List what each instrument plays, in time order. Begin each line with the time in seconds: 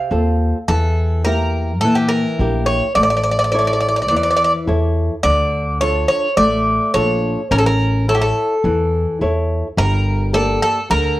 Already playing: bouzouki F5
0.11 upright bass D#2, nylon-string guitar C4 F4 A4
0.68 upright bass E2, nylon-string guitar E3, bouzouki A4
1.25 nylon-string guitar A#3 E4 G4, bouzouki A#4
1.81 upright bass A#2, nylon-string guitar E3, bouzouki A4
1.95 bouzouki G4
2.09 bouzouki A#4
2.39 upright bass A#1, nylon-string guitar A#3 E4 G4
2.66 bouzouki C#5
2.95 upright bass A1, nylon-string guitar A3, bouzouki D5
3.03 bouzouki D5
3.10 bouzouki D5
3.17 bouzouki D5
3.24 bouzouki D5
3.31 bouzouki D5
3.39 bouzouki D5
3.44 bouzouki D5
3.52 nylon-string guitar E4 A4 C#5, bouzouki D5
3.59 bouzouki D5
3.67 bouzouki D5
3.73 bouzouki D5
3.80 bouzouki D5
3.88 bouzouki D5
3.96 bouzouki D5
4.02 bouzouki D5
4.08 upright bass E2, nylon-string guitar E3, bouzouki D5
4.16 bouzouki D5
4.23 bouzouki D5
4.31 bouzouki D5
4.37 bouzouki D5
4.44 bouzouki D5
4.67 upright bass E2, nylon-string guitar E4 A4 C#5
5.23 upright bass D2, nylon-string guitar D3, bouzouki D5
5.81 nylon-string guitar D4 F4 A4, bouzouki C#5
6.08 bouzouki C#5
6.37 upright bass A1, nylon-string guitar A3, bouzouki D5
6.94 upright bass A#1, nylon-string guitar D4 F4 A4, bouzouki C#5
7.51 upright bass A1, nylon-string guitar C#4, bouzouki A#4
7.58 bouzouki A4
7.66 bouzouki A#4
8.08 nylon-string guitar E4 A4 C#5, bouzouki A4
8.14 bouzouki G4
8.21 bouzouki A4
8.64 upright bass E2, nylon-string guitar E3
9.21 upright bass E2, nylon-string guitar E4 A4 C#5
9.77 upright bass G1, nylon-string guitar G3, bouzouki A#4
10.33 nylon-string guitar A#3 G4 D5, bouzouki A4
10.62 bouzouki A4
10.90 upright bass D2, nylon-string guitar D3, bouzouki A#4